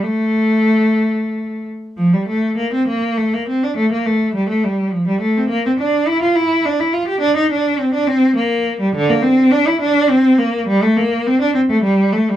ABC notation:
X:1
M:3/4
L:1/16
Q:1/4=103
K:Aphr
V:1 name="Cello"
A,8- A,2 z2 | F, G, A,2 B, C B,2 A, B, C D | A, B, A,2 G, A, G,2 F, G, A, C | B, C D2 E F E2 D E F G |
D _E D2 C D C2 B,3 G, | D, B, C2 D E D2 C2 B,2 | G, A, B,2 C D C A, G,2 A, G, |]